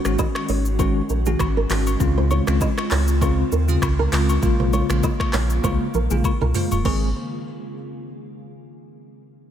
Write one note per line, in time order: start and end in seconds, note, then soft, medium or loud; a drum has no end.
0.00 1.96 D#3 medium
0.00 6.81 G#3 medium
0.00 1.96 C#4 medium
0.00 1.96 F#4 medium
0.05 0.17 G#1 medium
0.05 0.24 D#3 medium
0.05 0.24 G#3 medium
0.05 0.25 C#4 medium
0.05 0.25 F#4 medium
0.05 finger snap medium
0.05 cross-stick medium
0.05 shaker medium
0.19 0.28 D#5 medium
0.19 kick medium
0.19 low woodblock medium
0.19 shaker medium
0.35 finger snap medium
0.35 cross-stick medium
0.35 high agogo medium
0.49 1.01 G#1 medium
0.49 0.59 C#5 medium
0.49 open hi-hat medium
0.49 shaker medium
0.65 shaker medium
0.79 1.01 D#3 medium
0.79 1.01 G#3 medium
0.79 1.01 C#4 medium
0.79 1.01 F#4 loud
0.79 0.89 C5 medium
0.79 kick loud
0.79 high agogo medium
0.79 shaker medium
1.09 1.35 A#1 medium
1.09 1.19 A#4 medium
1.09 shaker medium
1.26 1.46 D#3 medium
1.26 1.46 G#3 medium
1.26 1.46 C#4 medium
1.26 1.46 F#4 medium
1.26 1.34 G#4 medium
1.26 shaker medium
1.39 1.66 G#1 medium
1.39 finger snap medium
1.39 kick loud
1.39 cross-stick medium
1.39 high agogo medium
1.39 low woodblock medium
1.39 shaker medium
1.57 1.64 A#4 medium
1.70 1.96 G#1 loud
1.70 1.91 D#3 medium
1.70 1.92 G#3 medium
1.70 1.92 C#4 medium
1.70 1.92 F#4 medium
1.70 1.80 C5 medium
1.70 finger snap medium
1.70 cross-stick medium
1.70 clap loud
1.70 open hi-hat medium
1.70 shaker medium
1.87 high agogo medium
1.87 shaker medium
2.00 2.41 C#2 loud
2.00 6.81 C#3 medium
2.00 2.43 C#3 medium
2.00 2.43 G#3 medium
2.00 4.40 C4 medium
2.00 2.43 C4 medium
2.00 6.81 F4 medium
2.00 2.43 F4 loud
2.00 kick loud
2.00 shaker medium
2.18 2.25 C5 medium
2.31 2.40 C#5 medium
2.31 high agogo medium
2.31 shaker soft
2.47 2.59 C#2 loud
2.47 2.67 C#3 medium
2.47 2.67 G#3 medium
2.47 2.67 C4 medium
2.47 2.67 F4 medium
2.47 finger snap medium
2.47 cross-stick medium
2.47 shaker medium
2.61 2.71 D#5 medium
2.61 kick medium
2.61 low woodblock medium
2.61 shaker medium
2.78 finger snap medium
2.78 cross-stick medium
2.78 high agogo medium
2.91 3.43 C#2 loud
2.91 3.01 C#5 medium
2.91 clap medium
2.91 open hi-hat medium
2.91 shaker medium
3.08 shaker medium
3.21 3.43 C#3 medium
3.21 3.43 G#3 medium
3.21 3.43 C4 medium
3.21 3.43 F4 loud
3.21 3.31 C5 medium
3.21 kick loud
3.21 high agogo medium
3.21 shaker medium
3.52 3.78 D#2 loud
3.52 3.69 A#4 medium
3.52 shaker medium
3.68 3.88 C#3 medium
3.68 3.88 G#3 medium
3.68 3.88 C4 medium
3.68 3.88 F4 medium
3.68 3.77 G#4 medium
3.68 shaker medium
3.82 4.08 C#2 loud
3.82 finger snap medium
3.82 kick medium
3.82 cross-stick medium
3.82 high agogo medium
3.82 low woodblock medium
3.82 shaker medium
3.99 4.13 A#4 medium
4.12 4.38 C#2 loud
4.12 4.34 C#3 medium
4.12 4.34 G#3 medium
4.12 4.34 C4 medium
4.12 4.34 F4 medium
4.12 4.22 C5 medium
4.12 finger snap medium
4.12 cross-stick medium
4.12 clap medium
4.12 open hi-hat medium
4.12 shaker medium
4.29 high agogo medium
4.29 shaker medium
4.42 4.83 A#1 loud
4.42 4.85 C#3 medium
4.42 4.86 G#3 medium
4.42 6.83 A#3 medium
4.42 4.86 A#3 medium
4.42 4.86 F4 loud
4.42 kick loud
4.42 shaker medium
4.60 4.67 C5 medium
4.60 mid tom loud
4.73 4.83 C#5 medium
4.73 high agogo medium
4.73 shaker medium
4.89 5.01 A#1 loud
4.89 5.09 C#3 medium
4.89 5.09 G#3 medium
4.89 5.09 A#3 medium
4.89 5.09 F4 medium
4.89 finger snap medium
4.89 cross-stick medium
4.89 shaker medium
5.03 5.13 D#5 medium
5.03 kick medium
5.03 low woodblock medium
5.03 shaker medium
5.20 finger snap medium
5.20 kick loud
5.20 cross-stick medium
5.20 high agogo medium
5.33 5.60 A#1 loud
5.33 5.43 C#5 medium
5.33 finger snap medium
5.33 cross-stick medium
5.33 clap medium
5.33 open hi-hat medium
5.33 shaker medium
5.50 shaker medium
5.64 5.78 C2 loud
5.64 5.85 C#3 medium
5.64 5.85 G#3 medium
5.64 5.85 A#3 medium
5.64 5.86 F4 loud
5.64 5.73 C5 medium
5.64 kick loud
5.64 high tom medium
5.64 high agogo medium
5.64 shaker medium
5.81 high tom medium
5.94 6.08 A#1 medium
5.94 6.04 A#4 medium
5.94 mid tom medium
5.94 shaker medium
6.11 6.22 A#1 loud
6.11 6.30 C#3 medium
6.11 6.30 G#3 medium
6.11 6.31 A#3 medium
6.11 6.31 F4 medium
6.11 6.19 G#4 medium
6.11 mid tom medium
6.11 shaker medium
6.24 kick loud
6.24 high agogo medium
6.24 low woodblock medium
6.24 shaker medium
6.41 6.53 C2 loud
6.41 6.55 A#4 medium
6.41 mid tom medium
6.54 6.76 C#3 medium
6.54 6.76 G#3 medium
6.54 6.76 A#3 medium
6.54 6.77 F4 medium
6.54 6.64 C5 medium
6.54 floor tom loud
6.54 open hi-hat medium
6.54 shaker medium
6.71 6.83 D#1 medium
6.71 floor tom loud
6.71 high agogo medium
6.71 shaker medium
6.85 7.13 G#1 loud
6.85 7.08 D#3 medium
6.85 7.13 D#3 medium
6.85 7.13 G#3 medium
6.85 7.08 G#3 medium
6.85 7.13 C4 medium
6.85 7.08 C4 medium
6.85 7.13 G#4 medium
6.85 7.09 G#4 medium
6.85 7.04 C5 medium
6.85 kick loud
6.85 crash medium
6.85 high agogo medium